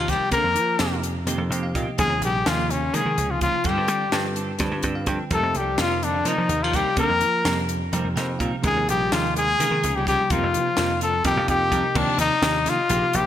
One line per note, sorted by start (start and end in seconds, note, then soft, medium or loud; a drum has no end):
0.00 0.16 D#2 medium
0.00 0.32 C3 medium
0.00 0.12 F3 medium
0.00 0.32 F3 soft
0.00 0.32 A#3 medium
0.00 0.33 D#4 medium
0.00 0.11 F4 medium
0.00 0.33 G4 medium
0.07 0.22 D#3 medium
0.07 0.23 A#3 medium
0.07 0.23 C4 medium
0.07 0.23 G4 medium
0.07 0.32 G4 medium
0.07 kick medium
0.07 closed hi-hat medium
0.12 0.35 G3 medium
0.20 muted slap bass stroke soft
0.31 0.43 D3 medium
0.31 0.46 D#3 medium
0.31 0.47 A#3 medium
0.31 1.01 A#3 medium
0.31 0.47 C4 medium
0.31 0.47 G4 medium
0.31 1.00 A#4 medium
0.31 kick medium
0.31 closed hi-hat medium
0.44 0.56 F2 medium
0.55 0.77 F3 medium
0.55 closed hi-hat medium
0.79 1.22 F2 medium
0.79 1.15 C3 medium
0.79 0.94 D#3 medium
0.79 1.15 F3 medium
0.79 1.15 A#3 medium
0.79 0.94 A#3 medium
0.79 0.95 C4 medium
0.79 1.15 D#4 medium
0.79 1.16 G4 medium
0.79 0.95 G4 medium
0.79 snare loud
0.79 closed hi-hat medium
1.03 closed hi-hat medium
1.26 1.37 F2 medium
1.26 1.97 C3 medium
1.26 1.42 D#3 medium
1.26 1.97 F3 medium
1.26 1.97 A#3 medium
1.26 1.42 A#3 medium
1.26 1.42 C4 medium
1.26 1.98 D#4 medium
1.26 1.99 G4 medium
1.26 1.42 G4 medium
1.26 closed hi-hat medium
1.38 1.49 F2 medium
1.50 1.72 F2 medium
1.50 1.66 A#3 soft
1.50 1.66 C4 soft
1.50 1.65 G4 medium
1.50 1.63 G5 medium
1.50 closed hi-hat medium
1.63 1.74 F5 medium
1.74 1.86 A#2 medium
1.74 1.89 D#3 medium
1.74 1.89 A#3 medium
1.74 1.90 C4 medium
1.74 1.90 G4 medium
1.74 1.98 D#5 medium
1.74 kick medium
1.74 closed hi-hat medium
1.98 2.09 D#2 medium
1.98 2.37 C3 medium
1.98 2.13 F3 medium
1.98 2.37 F3 medium
1.98 2.22 G#3 medium
1.98 2.37 A#3 medium
1.98 2.13 A#3 medium
1.98 2.13 C#4 medium
1.98 2.37 D#4 medium
1.98 2.37 G#4 medium
1.98 2.14 G#4 medium
1.98 2.21 G#4 loud
1.98 kick loud
1.98 closed hi-hat medium
2.09 2.20 D#2 medium
2.21 2.43 A#1 medium
2.21 2.47 G3 medium
2.21 closed hi-hat medium
2.25 2.49 G4 medium
2.45 2.89 D#2 medium
2.45 2.82 C3 medium
2.45 2.60 F3 medium
2.45 2.82 F3 medium
2.45 2.71 F3 medium
2.45 2.82 A#3 medium
2.45 2.61 A#3 medium
2.45 2.61 C#4 medium
2.45 2.82 D#4 medium
2.45 2.73 F4 medium
2.45 2.82 G4 medium
2.45 2.61 G#4 medium
2.45 snare loud
2.45 closed hi-hat medium
2.70 2.96 C#3 medium
2.70 2.96 C#4 medium
2.70 closed hi-hat medium
2.92 3.64 C3 medium
2.92 3.05 D#3 medium
2.92 3.65 F3 medium
2.92 3.08 F3 medium
2.92 3.33 G#3 medium
2.92 3.65 A#3 soft
2.92 3.08 A#3 medium
2.92 3.08 C#4 medium
2.92 3.65 D#4 medium
2.92 3.08 G#4 medium
2.92 3.65 G#4 medium
2.92 3.32 G#4 medium
2.92 closed hi-hat medium
3.06 3.17 D#3 medium
3.17 3.50 C#2 medium
3.17 3.33 A#3 soft
3.17 3.33 C#4 soft
3.17 3.32 G#4 medium
3.17 closed hi-hat medium
3.31 3.43 F3 medium
3.31 3.41 F4 medium
3.41 3.56 F3 medium
3.41 3.56 A#3 medium
3.41 3.56 C#4 medium
3.41 3.69 F4 medium
3.41 3.56 G#4 medium
3.41 kick medium
3.41 closed hi-hat medium
3.45 3.69 F3 medium
3.64 3.76 G2 medium
3.64 4.03 D3 medium
3.64 3.79 F3 medium
3.64 4.03 G3 medium
3.64 4.03 C4 medium
3.64 3.80 C4 medium
3.64 3.80 D4 medium
3.64 4.03 F4 medium
3.64 4.38 G4 medium
3.64 4.03 A4 medium
3.64 3.80 A4 medium
3.64 kick medium
3.64 closed hi-hat medium
3.69 4.38 G3 medium
3.78 3.88 G2 medium
3.88 4.10 G3 medium
3.88 closed hi-hat medium
4.12 4.55 G2 medium
4.12 4.48 D3 medium
4.12 4.27 F3 soft
4.12 4.48 G3 medium
4.12 4.49 C4 soft
4.12 4.28 C4 medium
4.12 4.28 D4 medium
4.12 4.49 F4 medium
4.12 4.49 A4 medium
4.12 4.28 A4 medium
4.12 snare medium
4.12 closed hi-hat medium
4.36 4.52 C4 soft
4.36 4.51 D4 soft
4.36 4.51 A4 soft
4.36 closed hi-hat medium
4.59 4.71 G2 medium
4.59 5.31 D3 medium
4.59 4.75 F3 medium
4.59 5.31 G3 medium
4.59 5.31 C4 medium
4.59 4.75 C4 medium
4.59 4.75 D4 medium
4.59 5.31 F4 medium
4.59 4.75 A4 medium
4.59 5.32 B4 medium
4.59 kick medium
4.59 snare soft
4.59 closed hi-hat medium
4.71 4.83 G2 medium
4.83 5.05 G2 medium
4.83 4.99 C4 soft
4.83 4.99 D4 soft
4.83 4.98 A4 medium
4.83 4.95 D5 medium
4.83 kick medium
4.83 closed hi-hat medium
4.95 5.07 F5 medium
5.06 5.18 G2 medium
5.06 5.23 F3 medium
5.06 5.23 C4 medium
5.06 5.23 D4 medium
5.06 5.23 A4 medium
5.06 5.30 G5 medium
5.06 kick medium
5.06 closed hi-hat medium
5.30 5.42 F2 medium
5.30 5.69 C3 medium
5.30 5.70 F3 medium
5.30 5.46 G3 medium
5.30 5.70 A#3 medium
5.30 5.46 C4 medium
5.30 5.70 D#4 medium
5.30 5.46 D#4 medium
5.30 5.70 G4 medium
5.30 5.59 A4 medium
5.30 5.46 A#4 medium
5.30 kick medium
5.30 closed hi-hat medium
5.36 5.56 A3 medium
5.43 5.54 F2 medium
5.55 5.76 C2 medium
5.55 5.80 G4 medium
5.55 closed hi-hat medium
5.60 5.81 G3 medium
5.77 6.21 F2 medium
5.77 6.14 C3 medium
5.77 6.14 F3 medium
5.77 5.93 G3 medium
5.77 6.14 A#3 soft
5.77 5.93 C4 medium
5.77 6.14 D#4 medium
5.77 5.94 D#4 medium
5.77 6.14 A#4 medium
5.77 5.94 A#4 medium
5.77 snare loud
5.77 closed hi-hat medium
5.81 6.04 F3 medium
5.81 6.06 F4 medium
6.02 6.28 D3 medium
6.02 6.17 C4 soft
6.02 6.30 D4 medium
6.02 6.17 D#4 soft
6.02 6.17 A#4 soft
6.02 closed hi-hat medium
6.24 6.97 C3 medium
6.24 6.64 D#3 medium
6.24 6.97 F3 soft
6.24 6.37 F3 medium
6.24 6.41 G3 medium
6.24 6.97 A#3 medium
6.24 6.41 C4 medium
6.24 6.97 D#4 soft
6.24 6.41 D#4 medium
6.24 6.64 D#4 medium
6.24 6.97 A#4 medium
6.24 6.41 A#4 medium
6.24 closed hi-hat medium
6.38 6.48 F3 medium
6.49 6.81 D#2 medium
6.49 6.65 C4 soft
6.49 6.65 D#4 soft
6.49 6.64 A#4 medium
6.49 closed hi-hat medium
6.63 6.76 F3 medium
6.63 6.77 F4 medium
6.73 6.88 G3 soft
6.73 6.99 G3 medium
6.73 6.89 C4 medium
6.73 6.88 D#4 medium
6.73 6.99 G4 medium
6.73 6.89 A#4 medium
6.73 kick medium
6.73 closed hi-hat medium
6.85 muted slap bass stroke soft
6.97 7.08 D3 loud
6.97 7.12 G3 medium
6.97 7.65 A#3 medium
6.97 7.12 C4 medium
6.97 7.12 D#4 medium
6.97 7.13 A#4 medium
6.97 7.66 A#4 medium
6.97 kick loud
6.97 closed hi-hat medium
7.09 7.23 F2 medium
7.21 7.43 F3 medium
7.21 closed hi-hat medium
7.44 7.88 F2 medium
7.44 7.80 C3 medium
7.44 7.81 F3 medium
7.44 7.59 G3 medium
7.44 7.81 A#3 medium
7.44 7.59 C4 medium
7.44 7.81 D#4 medium
7.44 7.60 D#4 medium
7.44 7.81 G4 medium
7.44 7.60 A#4 medium
7.44 snare loud
7.44 closed hi-hat medium
7.69 closed hi-hat medium
7.92 8.03 F2 medium
7.92 8.61 C3 medium
7.92 8.61 F3 medium
7.92 8.07 G3 medium
7.92 8.61 A#3 medium
7.92 8.07 C4 medium
7.92 8.62 D#4 medium
7.92 8.07 D#4 medium
7.92 8.64 G4 medium
7.92 8.07 A#4 medium
7.92 closed hi-hat medium
8.04 8.15 F2 medium
8.16 8.38 F2 medium
8.16 8.31 C4 soft
8.16 8.31 D#4 medium
8.16 8.30 A#4 medium
8.16 8.38 G5 medium
8.16 snare soft
8.16 closed hi-hat medium
8.39 8.51 A#2 medium
8.39 8.55 G3 medium
8.39 8.55 C4 medium
8.39 8.55 D#4 medium
8.39 8.55 A#4 medium
8.39 8.62 F5 medium
8.39 kick medium
8.39 closed hi-hat medium
8.62 8.74 D#2 medium
8.62 9.01 C3 medium
8.62 9.01 F3 medium
8.62 8.78 G#3 medium
8.62 8.87 G#3 medium
8.62 9.01 A#3 medium
8.62 8.79 C#4 medium
8.62 9.02 D#4 medium
8.62 8.79 F4 medium
8.62 9.02 G#4 medium
8.62 8.79 A#4 medium
8.62 kick loud
8.62 closed hi-hat medium
8.66 8.87 G#4 medium
8.76 8.87 D#2 medium
8.88 9.09 A#1 loud
8.88 9.14 G3 medium
8.88 9.15 G4 medium
8.88 closed hi-hat medium
9.10 9.54 D#2 medium
9.10 9.46 C3 medium
9.10 9.47 F3 medium
9.10 9.36 F3 medium
9.10 9.26 G#3 medium
9.10 9.47 A#3 medium
9.10 9.26 C#4 medium
9.10 9.47 D#4 medium
9.10 9.36 F4 medium
9.10 9.27 F4 medium
9.10 9.47 G#4 medium
9.10 9.27 A#4 medium
9.10 snare loud
9.10 closed hi-hat medium
9.36 9.92 G#3 medium
9.36 9.50 C#4 soft
9.36 9.50 F4 soft
9.36 9.97 G#4 loud
9.36 9.50 A#4 soft
9.36 closed hi-hat medium
9.58 10.29 C3 medium
9.58 9.70 D#3 medium
9.58 10.29 F3 medium
9.58 9.74 G#3 medium
9.58 10.29 A#3 medium
9.58 9.74 C#4 medium
9.58 10.30 D#4 medium
9.58 9.74 F4 medium
9.58 10.30 G#4 medium
9.58 9.74 A#4 medium
9.58 closed hi-hat medium
9.71 9.82 D#3 medium
9.83 10.15 C#2 medium
9.83 9.98 C#4 soft
9.83 9.97 F4 soft
9.83 9.97 A#4 medium
9.83 closed hi-hat medium
9.96 10.07 G3 medium
9.96 10.07 G4 medium
10.07 10.33 G3 medium
10.07 10.21 G#3 medium
10.07 10.21 C#4 medium
10.07 10.21 F4 medium
10.07 10.33 G4 medium
10.07 10.22 A#4 medium
10.07 kick medium
10.07 closed hi-hat medium
10.30 10.41 F2 loud
10.30 10.68 C3 medium
10.30 10.68 F3 medium
10.30 11.50 F3 medium
10.30 10.45 G3 medium
10.30 10.68 A#3 medium
10.30 10.45 C4 medium
10.30 10.68 D#4 medium
10.30 10.45 D#4 medium
10.30 11.02 F4 medium
10.30 10.69 G4 medium
10.30 10.45 A#4 medium
10.30 kick medium
10.30 closed hi-hat medium
10.43 10.56 F2 medium
10.54 10.75 F3 medium
10.54 closed hi-hat medium
10.77 11.20 F2 medium
10.77 11.13 C3 medium
10.77 11.13 F3 medium
10.77 10.92 G3 medium
10.77 11.13 A#3 medium
10.77 10.92 C4 medium
10.77 10.92 D#4 medium
10.77 11.13 D#4 medium
10.77 11.14 F4 medium
10.77 10.92 A#4 medium
10.77 snare loud
10.77 closed hi-hat medium
11.01 11.16 C4 soft
11.01 11.16 D#4 soft
11.01 11.24 A4 medium
11.01 11.15 A#4 soft
11.01 closed hi-hat medium
11.24 11.35 F2 medium
11.24 11.94 C3 medium
11.24 11.94 F3 medium
11.24 11.39 G3 medium
11.24 11.95 A#3 medium
11.24 11.39 C4 medium
11.24 11.95 D#4 medium
11.24 11.39 D#4 medium
11.24 11.48 G4 medium
11.24 11.96 A#4 medium
11.24 11.39 A#4 medium
11.24 kick loud
11.24 closed hi-hat medium
11.37 11.47 F2 medium
11.48 11.69 F2 medium
11.48 11.63 C4 soft
11.48 11.63 D#4 soft
11.48 11.98 G4 medium
11.48 11.62 A#4 medium
11.48 11.70 G5 medium
11.48 kick medium
11.48 closed hi-hat medium
11.71 11.82 F2 medium
11.71 11.86 G3 medium
11.71 11.86 C4 medium
11.71 11.87 D#4 medium
11.71 11.87 A#4 medium
11.71 11.93 D#5 medium
11.71 kick medium
11.71 closed hi-hat medium
11.94 12.06 D#2 loud
11.94 12.33 C3 medium
11.94 12.09 F3 medium
11.94 12.34 F3 medium
11.94 12.10 A#3 medium
11.94 12.34 A#3 medium
11.94 12.10 D4 medium
11.94 12.19 D4 medium
11.94 12.34 D#4 medium
11.94 12.10 G4 medium
11.94 12.34 G4 medium
11.94 kick loud
11.94 crash medium
12.18 12.29 D#2 medium
12.18 12.71 D#4 medium
12.18 closed hi-hat medium
12.42 12.67 D#2 medium
12.42 12.78 C3 medium
12.42 12.78 F3 medium
12.42 12.57 F3 medium
12.42 12.57 A#3 medium
12.42 12.79 A#3 medium
12.42 12.58 D4 medium
12.42 12.79 D#4 medium
12.42 12.58 G4 medium
12.42 12.79 G4 medium
12.42 snare loud
12.42 closed hi-hat medium
12.65 12.77 D#3 medium
12.65 12.81 A#3 soft
12.65 12.81 D4 soft
12.65 13.17 F4 medium
12.65 12.80 G4 soft
12.65 snare soft
12.65 closed hi-hat medium
12.89 13.01 A#1 loud
12.89 13.26 C3 medium
12.89 13.26 F3 medium
12.89 13.05 F3 medium
12.89 13.26 A#3 medium
12.89 13.05 A#3 medium
12.89 13.05 D4 medium
12.89 13.26 D#4 medium
12.89 13.26 G4 medium
12.89 13.05 G4 medium
12.89 closed hi-hat medium
13.13 13.26 A#1 medium
13.13 13.26 A#3 soft
13.13 13.26 D4 soft
13.13 13.26 G4 medium
13.13 closed hi-hat medium